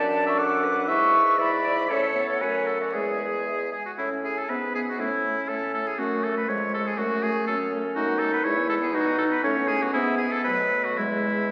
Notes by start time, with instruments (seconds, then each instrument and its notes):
Already playing: bassoon F#2, french horn D4, oboe D5, clarinet D5, flute A5
0.26 oboe E5, flute C#6
0.38 clarinet A4, oboe F#5, flute D6
0.64 clarinet B4
0.88 bassoon G#2, french horn E4, oboe E5, flute C#6
1.38 french horn E4, oboe D5, clarinet E5, flute B5
1.64 clarinet D5
1.90 bassoon A2, french horn C#4, oboe A4, clarinet C#5, flute E5
2.16 french horn B3
2.28 oboe A4, flute F#5
2.40 bassoon F#2, french horn A3, oboe B4, clarinet C#5, flute G#5
2.67 oboe A4, flute F#5
2.81 oboe F#4, flute D5
2.93 bassoon E2, french horn G#3, oboe G#4, clarinet G#4, flute E5
3.72 oboe G#4
3.86 oboe F#4
3.98 bassoon A2, clarinet C#4, french horn C#4, oboe E4, flute E5
4.24 french horn C#4, oboe G#4, flute E5
4.38 oboe A4
4.49 bassoon G#2, clarinet B3, french horn B3, oboe B4, flute E5
4.74 french horn B3, oboe G#4, flute E5
4.89 oboe F#4
4.99 bassoon A2, french horn A3, clarinet C#4, oboe E4, flute C#5
5.23 french horn A3, flute C#5
5.48 bassoon A2, french horn A3, oboe A4, flute C#5
5.73 french horn A3, oboe A4, flute C#5
5.87 oboe G#4
5.97 bassoon F#2, french horn A3, clarinet A3, oboe F#4, flute C#5
6.23 french horn A3, oboe A4, flute C#5
6.37 oboe B4
6.47 bassoon F2, french horn G#3, clarinet G#3, flute C#5, oboe C#5
6.72 french horn G#3, oboe A4, flute C#5
6.87 oboe G#4
6.97 bassoon F#2, french horn A3, clarinet A3, oboe F#4, flute C#5
7.22 french horn A3, oboe G#4, flute C#5
7.47 bassoon F#2, french horn A3, clarinet C#4, oboe A4, flute C#5
7.72 french horn A3, flute C#5
7.95 bassoon F#2, french horn A3, clarinet D#4, oboe F#4, flute D#5
8.08 french horn B3, flute F#5
8.19 french horn A3, oboe A4, flute D#5
8.32 french horn B3, oboe B4, flute F#5
8.44 bassoon E2, french horn G#3, clarinet E4, oboe C#5, flute E5
8.57 french horn B3, flute G#5
8.69 french horn G#3, oboe A4, flute E5
8.81 french horn B3, oboe G#4, flute G#5
8.93 bassoon B2, clarinet D#4, french horn D#4, oboe F#4, flute D#5
9.05 french horn B3, flute F#5
9.18 french horn D#4, oboe A4, flute D#5
9.30 french horn B3, oboe B4, flute F#5
9.43 bassoon A2, french horn A3, clarinet C#4, oboe C#5, flute D#5
9.56 french horn B3, flute F#5
9.68 french horn A3, oboe G#4, flute D#5
9.82 french horn B3, oboe F#4, flute F#5
9.93 bassoon G#2, french horn B3, clarinet B3, oboe E4, flute E5
10.18 oboe G#4
10.32 oboe A4
10.44 bassoon B2, clarinet F#3, french horn A3, oboe B4, flute D#5
10.85 oboe F#4
10.97 bassoon E2, french horn G#3, clarinet G#3, oboe E4, flute E5